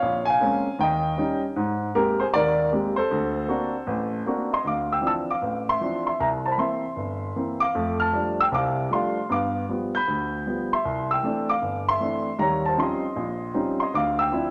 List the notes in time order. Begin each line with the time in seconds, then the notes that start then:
Already playing: C#5 F5
0.02 A#1
0.25 G#5
0.30 F5
0.40 G#3 A#3 C4 C#4
0.79 D#2 G5
0.83 D#5
1.18 G3 C#4 D#4
1.56 G#2
1.95 G#3 A#3 C4 G4 A#4
2.20 G#4 C5
2.34 D#2 A#4 D5
2.72 G#3 A#3 C4 G4
2.96 A4 C5
3.11 D2
3.48 A#3 C4 D4 F#4
3.87 A1
4.26 A#3 C4 D4 F#4
4.53 D#5 C6
4.64 D2 D6
4.68 F5
4.92 G5 E6
5.01 E3 F3 C4 D4
5.07 A5 E6
5.31 F5 D6
5.42 A1
5.69 E5 C6
5.81 E3 F3 C4 D4
6.07 E5 C6
6.20 C2 E5 A#5
6.46 C5 A5
6.52 B5
6.58 E3 A#3 C4 E5 C6
6.96 G1
7.36 E3 A#3 C4
7.60 F5 D6
7.75 F2 A3
8.00 A5 F6
8.13 F3 G3 A3 D4
8.40 G5 E6
8.52 C2 C3 F5 D6
8.90 F3 G3 A3 D4 C6
8.95 F5
9.29 G2 B3 D6
9.33 F5
9.69 F3 G3 B3
9.95 B5 G6
10.07 D2
10.46 F3 G3 B3
10.73 E5 C6
10.85 C2
11.11 G5 E6
11.23 E3 A3 C4 D4
11.49 F5 D6
11.62 G1
11.89 E5 C6
12.00 E3 A3 C4 D4
12.39 D#2 G3 C#5 A#5
12.66 C5 A5
12.77 F3 G3 C4 C#4 D#4 C6
12.82 D#5
13.16 A#1
13.54 F3 G3 C4 C#4 D#4
13.80 D#5 C6
13.94 D2 F5 D6
14.19 G5 E6
14.31 F3 C4 D4 E4